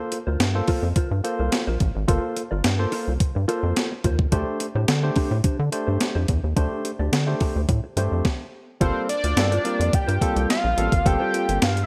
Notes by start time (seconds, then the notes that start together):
Already playing: A#3 F4 A4 C5
0.12 muted clean electric guitar stroke, closed hi-hat
0.27 D2 F4 A#4 C5
0.40 G2, snare, closed hi-hat
0.55 A#3 F4 A4 C5, muted clean electric guitar stroke
0.68 F4 A#4 C5, kick, open hi-hat
0.83 F2, muted clean electric guitar stroke
0.96 G2 F4 A#4 C5, kick, closed hi-hat
1.11 G2, muted clean electric guitar stroke
1.24 A#3 F4 A4 C5, muted clean electric guitar stroke, closed hi-hat
1.39 C2 F4 A#4 C5
1.52 muted clean electric guitar stroke, snare, closed hi-hat
1.67 A#1 F4 A#4 C5
1.80 A1, muted clean electric guitar stroke, kick, closed hi-hat
1.95 G#1, muted clean electric guitar stroke
2.08 G1 A#3 F4 A4 A#4 C5, kick, closed hi-hat
2.23 muted clean electric guitar stroke
2.36 muted clean electric guitar stroke, closed hi-hat
2.51 G1 F4 A#4 D5
2.64 G2, snare, closed hi-hat
2.79 A#3 F4 A4 C5, muted clean electric guitar stroke
2.92 F4 A#4 C5, open hi-hat
3.07 C2, muted clean electric guitar stroke
3.20 G2, muted clean electric guitar stroke, kick, closed hi-hat
3.35 G2, muted clean electric guitar stroke
3.48 A#3 F4 A4 A#4 C5, closed hi-hat
3.63 F2, muted clean electric guitar stroke
3.76 muted clean electric guitar stroke, snare, closed hi-hat
3.92 muted clean electric guitar stroke
4.04 D#2 F4 A#4 C5, kick, closed hi-hat
4.19 muted clean electric guitar stroke, kick
4.32 D2 A3 D4 G4 C5, kick, closed hi-hat
4.48 muted clean electric guitar stroke
4.60 muted clean electric guitar stroke, closed hi-hat
4.75 A2 D4 G4 C5
4.88 D3, snare, closed hi-hat
5.03 A3 D4 G4 C5, muted clean electric guitar stroke
5.16 D4 G4 C5, kick, open hi-hat
5.31 A2, muted clean electric guitar stroke
5.44 D3 D4 G4 C5, kick, closed hi-hat
5.59 D3
5.72 A3 D4 G4 C5, muted clean electric guitar stroke, closed hi-hat
5.87 G2 D4 G4 C5
6.00 muted clean electric guitar stroke, snare, closed hi-hat
6.15 F2 D4 G4 C5
6.28 E2, muted clean electric guitar stroke, kick, closed hi-hat
6.44 D#2, muted clean electric guitar stroke
6.56 D2 A3 D4 G4 C5, kick, closed hi-hat
6.72 muted clean electric guitar stroke
6.85 muted clean electric guitar stroke, closed hi-hat
6.99 D2 D4 G4 D5
7.12 D3, snare, closed hi-hat
7.27 A3 D4 G4 C5, muted clean electric guitar stroke
7.40 D4 G4 C5, kick, open hi-hat
7.56 D2, muted clean electric guitar stroke
7.69 A2, muted clean electric guitar stroke, kick, closed hi-hat
7.84 muted clean electric guitar stroke
7.97 G2 A3 D4 G4 C5, closed hi-hat
8.12 F2, muted clean electric guitar stroke
8.25 kick, snare
8.81 G1 G3 A#3 C4 F4 A4 A#4 C5, kick, closed hi-hat
9.09 D5, muted clean electric guitar stroke, closed hi-hat
9.24 D2 F4 A#4 C5, closed hi-hat
9.36 G2 G3 A#3 C4 F4 A4, snare, closed hi-hat
9.52 F4 A#4 C5, closed hi-hat
9.65 G3 A#3 C4 F4 A#4 C5, closed hi-hat
9.80 F2, muted clean electric guitar stroke, closed hi-hat
9.93 G2 G5, muted clean electric guitar stroke, kick, closed hi-hat
10.07 G2 F4 A#4 C5, closed hi-hat
10.21 G3 A#3 C4 F4 A4, muted clean electric guitar stroke, kick, closed hi-hat
10.36 C2, muted clean electric guitar stroke, closed hi-hat
10.49 F5, muted clean electric guitar stroke, snare, closed hi-hat
10.64 A#1, muted clean electric guitar stroke
10.77 A1 G3 A#3 C4 F4 A4, closed hi-hat
10.92 G#1, muted clean electric guitar stroke, kick, closed hi-hat
11.05 G1 G3 A#3 C4 F4 A4 G5, muted clean electric guitar stroke, kick, closed hi-hat
11.20 F4 A#4 C5
11.34 F4 A#4 C5, closed hi-hat
11.49 G1, muted clean electric guitar stroke, closed hi-hat
11.62 G2 F5, muted clean electric guitar stroke, snare, closed hi-hat
11.76 muted clean electric guitar stroke, closed hi-hat